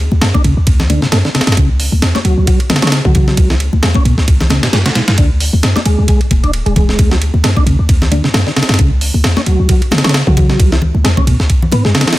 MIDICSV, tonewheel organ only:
0, 0, Header, 1, 2, 480
1, 0, Start_track
1, 0, Tempo, 451128
1, 1673, Time_signature, 4, 2, 24, 8
1, 12966, End_track
2, 0, Start_track
2, 0, Title_t, "Tonewheel organ"
2, 0, Program_c, 0, 16
2, 230, Note_on_c, 0, 57, 77
2, 296, Note_off_c, 0, 57, 0
2, 366, Note_on_c, 0, 62, 74
2, 450, Note_off_c, 0, 62, 0
2, 472, Note_on_c, 0, 49, 72
2, 580, Note_off_c, 0, 49, 0
2, 954, Note_on_c, 0, 50, 95
2, 1075, Note_off_c, 0, 50, 0
2, 1087, Note_on_c, 0, 49, 74
2, 1137, Note_off_c, 0, 49, 0
2, 1192, Note_on_c, 0, 57, 80
2, 1257, Note_off_c, 0, 57, 0
2, 1327, Note_on_c, 0, 50, 99
2, 1378, Note_off_c, 0, 50, 0
2, 1434, Note_on_c, 0, 49, 72
2, 1498, Note_off_c, 0, 49, 0
2, 1671, Note_on_c, 0, 49, 78
2, 1800, Note_off_c, 0, 49, 0
2, 2286, Note_on_c, 0, 61, 73
2, 2337, Note_off_c, 0, 61, 0
2, 2393, Note_on_c, 0, 54, 74
2, 2620, Note_off_c, 0, 54, 0
2, 2632, Note_on_c, 0, 54, 80
2, 2761, Note_off_c, 0, 54, 0
2, 3008, Note_on_c, 0, 61, 74
2, 3092, Note_off_c, 0, 61, 0
2, 3249, Note_on_c, 0, 54, 73
2, 3340, Note_off_c, 0, 54, 0
2, 3353, Note_on_c, 0, 54, 72
2, 3714, Note_off_c, 0, 54, 0
2, 3726, Note_on_c, 0, 52, 74
2, 3777, Note_off_c, 0, 52, 0
2, 4072, Note_on_c, 0, 56, 76
2, 4137, Note_off_c, 0, 56, 0
2, 4209, Note_on_c, 0, 61, 74
2, 4292, Note_off_c, 0, 61, 0
2, 4312, Note_on_c, 0, 47, 75
2, 4420, Note_off_c, 0, 47, 0
2, 4792, Note_on_c, 0, 49, 99
2, 4914, Note_off_c, 0, 49, 0
2, 4927, Note_on_c, 0, 47, 73
2, 4977, Note_off_c, 0, 47, 0
2, 5031, Note_on_c, 0, 56, 80
2, 5096, Note_off_c, 0, 56, 0
2, 5166, Note_on_c, 0, 49, 98
2, 5217, Note_off_c, 0, 49, 0
2, 5272, Note_on_c, 0, 47, 72
2, 5337, Note_off_c, 0, 47, 0
2, 5513, Note_on_c, 0, 50, 78
2, 5641, Note_off_c, 0, 50, 0
2, 6127, Note_on_c, 0, 62, 72
2, 6178, Note_off_c, 0, 62, 0
2, 6232, Note_on_c, 0, 56, 71
2, 6460, Note_off_c, 0, 56, 0
2, 6473, Note_on_c, 0, 56, 82
2, 6601, Note_off_c, 0, 56, 0
2, 6848, Note_on_c, 0, 62, 73
2, 6932, Note_off_c, 0, 62, 0
2, 7086, Note_on_c, 0, 56, 75
2, 7179, Note_off_c, 0, 56, 0
2, 7192, Note_on_c, 0, 56, 73
2, 7554, Note_off_c, 0, 56, 0
2, 7569, Note_on_c, 0, 54, 73
2, 7618, Note_off_c, 0, 54, 0
2, 7913, Note_on_c, 0, 57, 79
2, 7977, Note_off_c, 0, 57, 0
2, 8049, Note_on_c, 0, 62, 76
2, 8132, Note_off_c, 0, 62, 0
2, 8156, Note_on_c, 0, 49, 72
2, 8262, Note_off_c, 0, 49, 0
2, 8634, Note_on_c, 0, 50, 101
2, 8754, Note_off_c, 0, 50, 0
2, 8769, Note_on_c, 0, 49, 74
2, 8819, Note_off_c, 0, 49, 0
2, 8872, Note_on_c, 0, 57, 80
2, 8937, Note_off_c, 0, 57, 0
2, 9007, Note_on_c, 0, 50, 99
2, 9058, Note_off_c, 0, 50, 0
2, 9113, Note_on_c, 0, 49, 75
2, 9177, Note_off_c, 0, 49, 0
2, 9351, Note_on_c, 0, 49, 80
2, 9480, Note_off_c, 0, 49, 0
2, 9968, Note_on_c, 0, 61, 74
2, 10018, Note_off_c, 0, 61, 0
2, 10073, Note_on_c, 0, 54, 75
2, 10301, Note_off_c, 0, 54, 0
2, 10314, Note_on_c, 0, 54, 82
2, 10441, Note_off_c, 0, 54, 0
2, 10688, Note_on_c, 0, 61, 75
2, 10772, Note_off_c, 0, 61, 0
2, 10928, Note_on_c, 0, 54, 73
2, 11021, Note_off_c, 0, 54, 0
2, 11034, Note_on_c, 0, 54, 73
2, 11395, Note_off_c, 0, 54, 0
2, 11409, Note_on_c, 0, 52, 74
2, 11459, Note_off_c, 0, 52, 0
2, 11750, Note_on_c, 0, 56, 81
2, 11816, Note_off_c, 0, 56, 0
2, 11887, Note_on_c, 0, 61, 72
2, 11971, Note_off_c, 0, 61, 0
2, 11991, Note_on_c, 0, 47, 75
2, 12099, Note_off_c, 0, 47, 0
2, 12474, Note_on_c, 0, 59, 75
2, 12594, Note_off_c, 0, 59, 0
2, 12606, Note_on_c, 0, 56, 99
2, 12702, Note_off_c, 0, 56, 0
2, 12712, Note_on_c, 0, 49, 80
2, 12820, Note_off_c, 0, 49, 0
2, 12847, Note_on_c, 0, 52, 74
2, 12931, Note_off_c, 0, 52, 0
2, 12966, End_track
0, 0, End_of_file